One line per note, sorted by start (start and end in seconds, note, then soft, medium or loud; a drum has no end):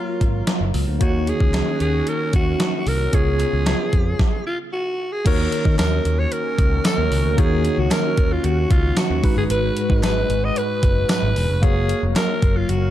0.00 0.97 F#3 medium
0.00 0.99 F#3 medium
0.00 0.96 A#3 medium
0.00 0.75 F4 medium
0.00 0.96 F4 medium
0.00 0.98 F4 medium
0.00 0.99 A#4 medium
0.00 0.97 C#5 medium
0.21 0.41 G#1 medium
0.21 kick medium
0.21 closed hi-hat medium
0.47 snare loud
0.47 clap medium
0.47 closed hi-hat loud
0.61 0.71 F#1 medium
0.74 0.84 C#2 medium
0.74 open hi-hat medium
0.88 0.98 D2 medium
0.99 1.31 D#2 loud
0.99 3.11 D#3 medium
0.99 1.76 D#3 medium
0.99 3.08 A#3 medium
0.99 3.11 C#4 medium
0.99 3.09 D#4 medium
0.99 3.11 F#4 medium
0.99 3.09 F#4 medium
0.99 1.30 F#4 medium
0.99 3.10 C#5 medium
0.99 kick loud
0.99 closed hi-hat medium
1.27 1.81 G#4 loud
1.27 closed hi-hat medium
1.40 1.60 C#2 medium
1.40 kick medium
1.54 snare loud
1.54 clap medium
1.54 closed hi-hat medium
1.80 2.01 D#2 medium
1.80 2.10 G#4 loud
1.80 closed hi-hat medium
2.07 2.34 A#4 loud
2.07 closed hi-hat medium
2.33 2.54 D#2 medium
2.33 2.90 F#4 loud
2.33 kick medium
2.33 closed hi-hat medium
2.60 snare loud
2.60 clap medium
2.60 closed hi-hat loud
2.87 3.07 C2 medium
2.87 3.16 A#4 loud
2.87 open hi-hat medium
3.12 3.43 C#2 loud
3.12 4.18 C#3 medium
3.12 3.89 C#3 medium
3.12 4.17 B3 medium
3.12 4.18 B3 medium
3.12 4.17 F4 medium
3.12 4.18 F4 medium
3.12 4.18 G#4 medium
3.12 4.46 G#4 medium
3.12 4.18 C#5 medium
3.12 kick loud
3.12 closed hi-hat medium
3.40 clap medium
3.40 closed hi-hat medium
3.53 3.73 C#2 medium
3.66 snare loud
3.66 clap medium
3.66 closed hi-hat medium
3.93 4.13 F2 medium
3.93 kick medium
3.93 closed hi-hat medium
4.19 kick loud
4.19 snare medium
4.47 4.58 F4 medium
4.73 5.14 F#4 medium
5.13 5.26 G#4 medium
5.25 5.46 D#2 loud
5.25 9.20 D#3 medium
5.25 6.01 D#3 medium
5.25 7.34 A#3 medium
5.25 9.20 C#4 medium
5.25 7.34 D#4 medium
5.25 11.58 F#4 medium
5.25 7.34 F#4 medium
5.25 5.76 A#4 medium
5.25 7.35 C#5 medium
5.25 kick loud
5.25 closed hi-hat loud
5.25 crash medium
5.52 closed hi-hat medium
5.65 5.75 D#3 medium
5.65 kick medium
5.79 5.99 D#2 medium
5.79 6.21 A#4 medium
5.79 snare loud
5.79 clap medium
5.79 closed hi-hat medium
5.79 tambourine medium
6.05 6.25 D#2 medium
6.05 closed hi-hat medium
6.19 6.34 C#5 medium
6.32 6.85 A#4 loud
6.32 closed hi-hat medium
6.58 6.78 C#2 medium
6.58 kick medium
6.58 closed hi-hat medium
6.85 7.41 A#4 loud
6.85 snare loud
6.85 clap medium
6.85 closed hi-hat loud
6.85 tambourine medium
6.98 7.08 D#2 medium
7.11 7.21 C#2 medium
7.11 open hi-hat medium
7.25 7.35 D2 medium
7.37 7.68 D#2 loud
7.37 8.14 D#3 medium
7.37 9.20 A#3 medium
7.37 9.20 D#4 medium
7.37 9.20 F#4 medium
7.37 7.80 G#4 medium
7.37 9.21 C#5 medium
7.37 kick loud
7.37 closed hi-hat medium
7.65 closed hi-hat medium
7.78 7.88 C#2 medium
7.78 7.94 F#4 medium
7.91 8.34 A#4 loud
7.91 snare loud
7.91 clap medium
7.91 closed hi-hat medium
7.91 tambourine medium
8.17 8.38 D#2 medium
8.17 kick medium
8.17 closed hi-hat medium
8.32 8.46 F4 medium
8.44 8.64 D#2 loud
8.44 8.73 F#4 medium
8.44 closed hi-hat medium
8.71 8.91 C#2 medium
8.71 8.99 F4 medium
8.71 kick medium
8.71 closed hi-hat medium
8.97 9.37 F#4 medium
8.97 snare loud
8.97 clap medium
8.97 closed hi-hat loud
8.97 tambourine medium
9.10 9.20 D#2 medium
9.22 9.34 G#1 loud
9.22 9.99 G#2 medium
9.22 11.31 G#3 medium
9.22 11.60 G#3 medium
9.22 11.32 D#4 medium
9.22 11.32 F#4 medium
9.22 11.60 B4 medium
9.22 11.33 B4 medium
9.22 kick loud
9.22 open hi-hat medium
9.37 9.47 G1 loud
9.37 9.44 G#4 medium
9.50 9.70 G#1 loud
9.50 10.00 B4 loud
9.50 closed hi-hat loud
9.77 closed hi-hat medium
9.90 10.00 G#2 medium
9.90 kick medium
10.03 10.23 G#1 loud
10.03 10.46 B4 loud
10.03 snare loud
10.03 clap medium
10.03 closed hi-hat medium
10.03 tambourine medium
10.30 10.50 G#1 medium
10.30 closed hi-hat medium
10.45 10.59 D#5 loud
10.56 11.10 B4 loud
10.56 closed hi-hat medium
10.83 11.03 F#1 medium
10.83 kick medium
10.83 closed hi-hat medium
11.09 11.65 B4 loud
11.09 snare loud
11.09 clap medium
11.09 closed hi-hat loud
11.09 tambourine medium
11.23 11.33 G#1 medium
11.36 11.46 E1 medium
11.36 open hi-hat medium
11.50 11.60 F1 medium
11.61 11.93 F#1 loud
11.61 12.90 F#3 medium
11.61 12.90 A#3 medium
11.61 12.90 F#4 medium
11.61 12.03 G#4 loud
11.61 12.90 A#4 medium
11.61 12.90 C#5 medium
11.61 12.90 F5 medium
11.61 kick loud
11.61 closed hi-hat medium
11.89 closed hi-hat medium
12.03 12.13 F1 medium
12.16 12.58 A#4 loud
12.16 snare loud
12.16 clap medium
12.16 closed hi-hat medium
12.16 tambourine medium
12.42 12.62 F#1 medium
12.42 kick medium
12.42 closed hi-hat medium
12.57 12.71 F4 medium
12.69 12.89 F#1 medium
12.69 12.90 F#4 medium
12.69 closed hi-hat medium